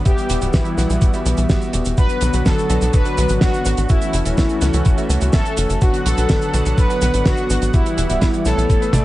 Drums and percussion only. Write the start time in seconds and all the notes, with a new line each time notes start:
0.05 kick, closed hi-hat, cabasa
0.18 closed hi-hat, cabasa
0.30 closed hi-hat, cabasa
0.42 closed hi-hat, cabasa
0.53 kick, snare, closed hi-hat, cabasa
0.65 closed hi-hat, cabasa
0.78 snare, closed hi-hat, cabasa
0.90 closed hi-hat, cabasa
1.02 kick, closed hi-hat, cabasa
1.14 closed hi-hat, cabasa
1.26 closed hi-hat, cabasa
1.37 closed hi-hat, cabasa
1.50 kick, snare, closed hi-hat, cabasa
1.61 closed hi-hat, cabasa
1.73 closed hi-hat, cabasa
1.85 closed hi-hat, cabasa
1.98 kick, closed hi-hat, cabasa
2.09 closed hi-hat, cabasa
2.21 closed hi-hat, cabasa
2.33 closed hi-hat, cabasa
2.46 kick, snare, closed hi-hat, cabasa
2.58 closed hi-hat, cabasa
2.70 closed hi-hat, cabasa
2.81 closed hi-hat, cabasa
2.93 kick, closed hi-hat, cabasa
3.05 closed hi-hat, cabasa
3.18 closed hi-hat, cabasa
3.29 closed hi-hat, cabasa
3.41 kick, snare, closed hi-hat, cabasa
3.53 closed hi-hat, cabasa
3.65 closed hi-hat, cabasa
3.77 closed hi-hat, cabasa
3.89 kick, closed hi-hat, cabasa
4.01 closed hi-hat, cabasa
4.13 closed hi-hat, cabasa
4.25 closed hi-hat, cabasa
4.38 kick, snare, closed hi-hat, cabasa
4.49 closed hi-hat, cabasa
4.61 snare, closed hi-hat, cabasa
4.74 closed hi-hat, cabasa
4.85 kick, closed hi-hat, cabasa
4.98 closed hi-hat, cabasa
5.10 closed hi-hat, cabasa
5.21 closed hi-hat, cabasa
5.33 kick, snare, closed hi-hat, cabasa
5.45 closed hi-hat, cabasa
5.57 closed hi-hat, cabasa
5.70 closed hi-hat, cabasa
5.81 kick, closed hi-hat, cabasa
5.94 closed hi-hat, cabasa
6.06 closed hi-hat, cabasa
6.18 closed hi-hat, cabasa
6.29 kick, snare, closed hi-hat, cabasa
6.42 closed hi-hat, cabasa
6.54 closed hi-hat, cabasa
6.66 closed hi-hat, cabasa
6.78 kick, closed hi-hat, cabasa
6.90 closed hi-hat, cabasa
7.01 closed hi-hat, cabasa
7.14 closed hi-hat, cabasa
7.25 kick, snare, closed hi-hat, cabasa
7.37 closed hi-hat, cabasa
7.50 closed hi-hat, cabasa
7.62 closed hi-hat, cabasa
7.74 kick, closed hi-hat, cabasa
7.86 closed hi-hat, cabasa
7.98 closed hi-hat, cabasa
8.10 closed hi-hat, cabasa
8.21 kick, snare, closed hi-hat, cabasa
8.33 closed hi-hat, cabasa
8.45 snare, closed hi-hat, cabasa
8.59 closed hi-hat, cabasa
8.70 kick, closed hi-hat, cabasa
8.82 closed hi-hat, cabasa
8.93 closed hi-hat, high tom, cabasa